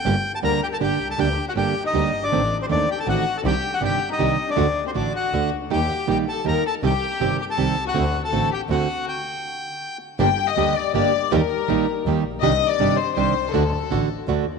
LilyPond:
<<
  \new Staff \with { instrumentName = "Bandoneon" } { \time 3/4 \key g \minor \tempo 4 = 160 g''8. a''16 bes''8 g''16 a''16 g''8. a''16 | g''8. fis''16 g''8. ees''4 d''16~ | d''8. c''16 d''8 g''16 a''16 fis''8. a''16 | g''8. fis''16 g''8. ees''4 d''16~ |
d''8. c''16 d''8 fis''4 r8 | g''4 g''8 a''8 bes''8 a''8 | g''4. g''16 a''4 fis''16~ | fis''8. a''8. g''8 fis''4 |
g''2~ g''8 r8 | r2. | r2. | r2. |
r2. | }
  \new Staff \with { instrumentName = "Violin section" } { \time 3/4 \key g \minor r4 bes'8 g'16 a'16 g'8. a'16 | g'8. fis'16 g'8. ees'4 d'16~ | d'8. c'16 d'8 g'16 a'16 fis'8. a'16 | g'8. fis'16 g'8. ees'4 d'16~ |
d'8. c'16 d'8 fis'4 r8 | g'4 g'8 a'8 bes'8 a'8 | g'4. g'16 a'4 fis'16~ | fis'8. a'8. g'8 fis'4 |
r2. | g''8. ees''8. d''8 d''4 | bes'2 r4 | ees''8. d''8. c''8 c''4 |
a'2 r4 | }
  \new Staff \with { instrumentName = "Nylon-string guitar" } { \time 3/4 \key g \minor <d g bes d' g'>16 r8. <d g bes d' g'>8 r8 <d g bes d' g'>8 r8 | <d g bes d' g'>16 r8. <d g bes d' g'>8 r8 <d g bes d' g'>8 r8 | <ees a c'>16 r8. <ees a c'>8 r8 <ees a c'>8 r8 | <c ees g d' g'>16 r8. <c ees g d' g'>8 r8 <c ees g d' g'>8 r8 |
<d a d' fis'>16 r8. <d a d' fis'>8 r8 <d a d' fis'>8 r8 | <ees g bes ees' g'>16 r8. <ees g bes ees' g'>8 r8 <ees g bes ees' g'>8 r8 | <c ees g c' g'>16 r8. <c ees g c' g'>8 r8 <c ees g c' g'>8 r8 | <d a c' fis'>16 r8. <d a c' fis'>8 r8 <d a c' fis'>8 r8 |
r2. | <d g bes d' g'>16 r8. <d g bes d' g'>8 r8 <d g bes d' g'>8 r8 | <ees g bes ees' g'>16 r8. <ees g bes ees' g'>8 r8 <ees g bes ees' g'>8 r8 | <c ees g d' g'>16 r8. <c ees g d' g'>8 r8 <c ees g d' g'>8 r8 |
<d a d' fis'>16 r8. <d a d' fis'>8 r8 <d a d' fis'>8 r8 | }
  \new Staff \with { instrumentName = "Double bass" } { \clef bass \time 3/4 \key g \minor g,,8 r8 d,8 r8 g,,8 c,8 | d,8 r8 g,,8 r8 d,8 g,,8 | a,,8 r8 ees,8 r8 a,,8 r8 | c,8 r8 g,,8 r8 c,8 r8 |
d,8 r8 a,,8 r8 d,8 cis,8 | ees,8 r8 bes,,8 r8 ees,8 r8 | c,8 r8 g,,8 r8 c,8 c,8 | d,8 r8 a,,8 r8 d,8 r8 |
r2. | g,,8 r8 d,8 r8 g,,8 r8 | ees,8 r8 bes,,8 r8 ees,8 bes,,8 | c,8 r8 g,,8 r8 c,8 c,8 |
d,8 r8 a,,8 r8 d,8 ees,8 | }
>>